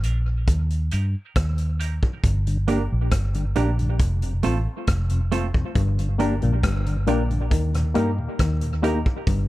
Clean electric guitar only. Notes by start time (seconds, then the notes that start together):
0.04 A#3 D4 G4 A#4
0.92 A#3 D#4 G4 A#4
1.80 A#3 D#4 G4 A#4
2.03 muted clean electric guitar stroke
2.68 A#3 D4 G4 A#4
3.56 A#3 D4 G4 A#4
4.43 A3 C4 F4 A4
5.32 A3 C4 F4 A4
5.55 muted clean electric guitar stroke
6.19 A#3 D4 G4 A#4
7.08 A#3 D4 G4 A#4
7.95 A#3 D#4 G4 A#4
8.83 A#3 D#4 G4 A#4